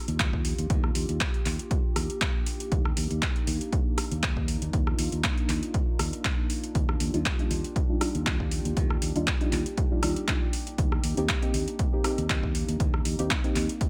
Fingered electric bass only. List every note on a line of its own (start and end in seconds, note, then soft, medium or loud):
0.08 0.53 D#2 medium
0.59 0.67 D#2 medium
0.70 0.90 D#2 medium
0.95 1.06 D#2 loud
1.09 1.18 D#2 medium
1.46 1.56 D#2 loud
1.96 2.06 D#2 medium
2.72 2.91 D#2 medium
2.97 3.07 D#2 loud
3.11 3.19 D#2 loud
3.47 3.58 D#2 loud
4.12 4.57 D#2 medium
4.62 4.71 D#2 medium
4.73 4.93 D#2 loud
4.99 5.09 D#2 loud
5.12 5.21 D#2 medium
5.49 5.59 D#2 loud
5.99 6.10 D#2 medium
6.75 6.95 D#2 medium
7.00 7.11 D#2 loud
7.14 7.23 D#2 loud
7.51 7.61 D#2 loud
8.15 8.60 D#2 medium
8.65 8.74 D#2 medium
8.77 8.96 D#2 loud
9.02 9.12 D#2 loud
9.16 9.24 D#2 loud
9.52 9.63 D#2 loud
10.03 10.13 D#2 medium
10.78 10.98 D#2 loud
11.04 11.14 D#2 loud
11.17 11.26 D#2 loud
11.54 11.64 D#2 loud
12.18 12.63 D#2 medium
12.69 12.77 D#2 medium
12.80 13.00 D#2 medium
13.05 13.16 D#2 loud
13.19 13.28 D#2 loud
13.56 13.66 D#2 loud